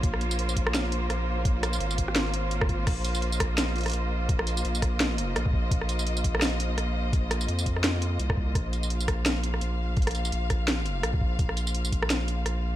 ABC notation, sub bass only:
X:1
M:4/4
L:1/8
Q:"Swing 16ths" 1/4=169
K:Bbm
V:1 name="Sub bass" clef=bass
B,,,6 B,,,2- | B,,,2 A,,,6 | B,,,6 B,,,2- | B,,,2 B,,,4 B,,,2 |
B,,,6 B,,,2- | B,,,2 F,,4 C,,2 | B,,,6 B,,,2- | B,,,2 B,,,4 B,,,2 |
B,,,6 B,,,2 |]